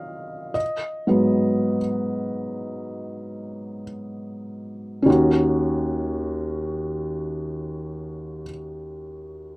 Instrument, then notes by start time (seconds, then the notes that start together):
felt piano
Already playing: D#3 F#3 C#4 D#5 F5
0.54 D#5
1.07 G#2 F#3 B3
5.02 D#2 C#4
5.07 D#4 F#4